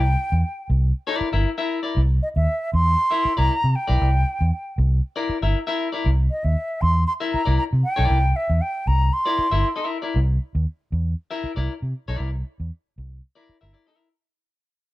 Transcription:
Already playing: C2 G5
0.32 E2
0.70 C2
1.07 E4 A#4 D5
1.21 muted fingered electric bass stroke
1.33 G1 E4 A#4 E5
1.58 E4 A#4 E5
1.83 E4 A#4 D5
1.97 C2
2.23 D#5
2.36 D#2 E5
2.74 E2 C6
3.11 E4 A#4 E5
3.25 muted fingered electric bass stroke
3.37 C2 E4 A#4 D5 A#5
3.64 C3
3.76 G5
3.88 B1 E4 A#4 D5
4.02 C2
4.41 E2
4.78 C2
5.16 E4 A#4 D5
5.29 muted fingered electric bass stroke
5.42 G1 E4 A#4 E5
5.67 E4 A#4 E5
5.92 E4 A#4 D5
6.06 C2
6.31 D#5
6.44 D#2 E5
6.81 E2 C6
7.07 C6
7.20 E4 A#4 E5
7.33 A#5, muted fingered electric bass stroke
7.45 C2 E4 A#4 D5
7.58 A#5
7.73 C3
7.84 G5
7.96 B1 E4 A#4 D5
8.10 C2
8.36 E5
8.50 E2
8.61 G5
8.87 C2 A#5
9.13 C6
9.26 E4 A#4 D5
9.38 muted fingered electric bass stroke
9.51 G1 E4 A#4 E5
9.76 E4 A#4 E5
10.02 E4 A#4 D5
10.16 C2
10.55 D#2
10.92 E2
11.31 E4 A#4 E5
11.44 muted fingered electric bass stroke
11.56 C2 E4 A#4 D5
11.82 C3
12.08 B1 E4 A#4 D5
12.20 C2
12.60 E2
12.98 C2
13.35 E4 A#4 D5
13.49 muted fingered electric bass stroke
13.61 G1 E4 A#4 E5
13.73 E4 A#4 D5
13.87 E4 A#4 E5

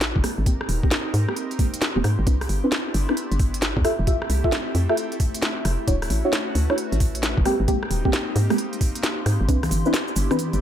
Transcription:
Already playing: A1 D4 E4 F#4 A4 E5
0.01 snare, closed hi-hat
0.16 F#1, kick
0.24 G#3 A#3 C4 D#4 G4 A#4, cross-stick, open hi-hat
0.38 G#1
0.46 G#3 A#3 C4 G4, kick, closed hi-hat
0.61 cross-stick
0.68 D#1 C6, open hi-hat
0.83 G#3 A#3 C4 G4, kick
0.91 snare, closed hi-hat
1.14 G#2 F5, open hi-hat
1.28 G#3 A#3 C4 G4, cross-stick
1.36 closed hi-hat
1.51 closed hi-hat
1.59 G#3 A#3 C4 G4, kick, open hi-hat
1.74 closed hi-hat
1.82 snare, closed hi-hat
1.96 D#1 G#3 A#3 C4 G4
2.04 G#2, cross-stick, open hi-hat
2.19 G#1
2.27 C2 B3 C4 D4 E4 B4, kick, closed hi-hat
2.41 cross-stick, open hi-hat
2.49 G1, open hi-hat
2.64 C4 D4 E4 B4
2.72 snare, closed hi-hat
2.94 G1, open hi-hat
2.99 E5
3.09 C4 D4 E4 B4, cross-stick
3.17 closed hi-hat
3.32 G1, closed hi-hat
3.40 kick, open hi-hat
3.54 closed hi-hat
3.62 snare, closed hi-hat
3.77 E2, kick
3.85 A3 C4 E4 F4 G4 A4 E5, cross-stick, open hi-hat
3.99 F1
4.07 F4 G4 A4 E5, kick, closed hi-hat
4.22 cross-stick
4.30 C2, open hi-hat
4.44 F4 G4 A4 E5, kick
4.52 snare, closed hi-hat
4.75 F2, open hi-hat
4.89 F4 G4 A4 E5, cross-stick
4.97 closed hi-hat
5.12 closed hi-hat
5.20 kick, open hi-hat
5.34 closed hi-hat
5.42 snare, closed hi-hat
5.65 F1, cross-stick, open hi-hat
5.88 D1 A3 C#4 D4 E4 F#4 C#5, kick, closed hi-hat
6.00 B4, cross-stick, open hi-hat
6.10 A1, open hi-hat
6.25 D4 E4 F#4 C#5
6.33 snare, closed hi-hat
6.55 D2, open hi-hat
6.70 D4 E4 F#4 C#5, cross-stick
6.78 closed hi-hat
6.92 A1, closed hi-hat
7.00 kick, open hi-hat
7.15 closed hi-hat
7.23 snare, closed hi-hat
7.38 F#1, kick
7.45 G#3 A#3 C4 D#4 G4, cross-stick, open hi-hat
7.60 G#1
7.68 G#3 A#3 C4 G4, kick, closed hi-hat
7.83 cross-stick
7.91 D#1, open hi-hat
8.05 G#3 A#3 C4 G4, kick
8.13 snare, closed hi-hat
8.18 C6
8.36 G#2 F5, open hi-hat
8.50 G#3 A#3 C4 G4, cross-stick, open hi-hat
8.58 closed hi-hat
8.73 closed hi-hat
8.81 kick, open hi-hat
8.96 closed hi-hat
9.03 snare, closed hi-hat
9.26 G#2, cross-stick, open hi-hat
9.41 G#1
9.49 C2 B3 C4 D4 E4 G4 B4, kick, closed hi-hat, cabasa
9.63 cross-stick, open hi-hat, high conga, cabasa
9.71 G1, open hi-hat, cabasa
9.86 C4 D4 E4 B4, cabasa
9.94 E5, snare, closed hi-hat, cabasa
10.08 cabasa
10.16 G1, open hi-hat, cabasa
10.31 C4 D4 E4 B4, cross-stick, high conga, cabasa
10.39 closed hi-hat, cabasa
10.53 G1, closed hi-hat, cabasa

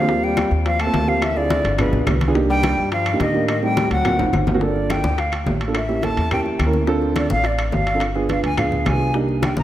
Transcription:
Already playing: D#2 F3 F5
0.01 C4 D4 F4 G#4
0.08 A#3 C4 F4 G4, high bongo, high conga
0.23 G3 G5, high conga
0.37 high bongo, high conga, high timbale, claves
0.51 D#2, high conga
0.65 F3 F5, high bongo, high conga, high timbale
0.79 A3 A5, high conga, high timbale, claves
0.87 A#3 C4 F4 A4
0.94 D2, high bongo, low bongo, high conga, high timbale, low timbale
1.07 F3 A#3 C4 F4 G4 F5, high conga
1.22 E3 E5, high bongo, high conga, high timbale, claves
1.36 D3 C4 E4 F4 G#4 D5, high bongo, high conga
1.50 high bongo, high conga, high timbale
1.64 G1, high conga, high timbale
1.78 B2 B3 D4 F4 G#4 B4, high bongo, high conga, low conga, high timbale, claves
1.92 B1, high bongo, high conga, low conga
2.07 C2, high bongo, low bongo, high conga, high timbale, low timbale, claves
2.21 high bongo, high conga, high timbale
2.28 B3 D4 F4 G#4
2.35 A#3 D4 D#4 G4, high bongo, high conga
2.50 G3 G5, high conga
2.63 high bongo, high conga, high timbale, claves
2.78 G2, high conga
2.92 F3 F5, high bongo, high conga, high timbale
3.06 high conga, high timbale, claves
3.13 A#3 D4 D#4 G4
3.20 A2 D#3 D#5, high bongo, low bongo, high conga, high timbale
3.34 A#3 D4 D#4 G4, high conga
3.48 D#3 D#5, high bongo, high conga, high timbale, claves
3.62 G3 A3 C4 D#4 G4 G5, high bongo, high conga
3.77 high bongo, high conga, high timbale
3.91 D2 F#3 F#5, high conga, high timbale
4.05 A#3 C4 F4 F#4, high bongo, high conga, low conga, high timbale, claves
4.19 G#1, high bongo, high conga, low conga, high timbale
4.33 G1, high bongo, high conga, high timbale, claves
4.47 low bongo, high conga, low timbale
4.54 A#3 C4 F4 F#4
4.61 A#3 D4 F4 A4 D5, high bongo, high conga
4.76 high bongo, high conga
4.90 G5, high bongo, high conga, high timbale, claves
5.04 D2, high conga
5.18 F5, high bongo, high conga, high timbale
5.32 high bongo, high conga, high timbale, claves
5.46 A1, high bongo, low bongo, high conga, low timbale
5.60 high bongo, high conga, high timbale
5.67 A#3 D4 F4 A4
5.75 E5, high bongo, high conga, high timbale, claves
5.88 A#3 C#4 E4 G4, high bongo, high conga
6.02 A#3 C#4 E4 A4 A5, high bongo, high conga, high timbale
6.17 E2, high timbale
6.31 A#3 C#4 E4 G4 G5, high bongo, high conga, low conga, high timbale, claves
6.46 high bongo, high conga
6.59 D2, high bongo, low bongo, high conga, high timbale, claves
6.66 A#3 C#4 E4 A#4
6.73 high bongo, high conga
6.87 C4 D4 F4 A4, high bongo, high conga
7.01 high bongo, high conga
7.16 D5, high bongo, high conga, high timbale, claves
7.30 A1 F5, high conga
7.44 D5, high bongo, high conga, high timbale
7.58 high bongo, high conga, high timbale, claves
7.72 G1 F5, high bongo, low bongo, high conga, low timbale
7.86 high bongo, high conga, high timbale
7.94 C4 D4 F4 A4
8.00 high bongo, high conga, high timbale, claves
8.15 B3 D4 F4 G#4, high bongo, high conga
8.29 B3 D4 F4 B4 F5, high bongo, high conga, high timbale
8.44 D2 G#5, high timbale
8.57 B3 D4 F4 G#4 F5, high bongo, high conga, low conga, high timbale, claves
8.72 high bongo, high conga, low conga
8.86 C2 G#5, high bongo, low bongo, high conga, high timbale, low timbale, claves
8.93 B3 D4 F4 G#4
9.00 high bongo
9.14 A#3 D4 D#4 G4, high bongo, high conga
9.29 high bongo, high conga
9.42 G5, high bongo, high conga, high timbale, claves
9.57 C2 A#5, high conga

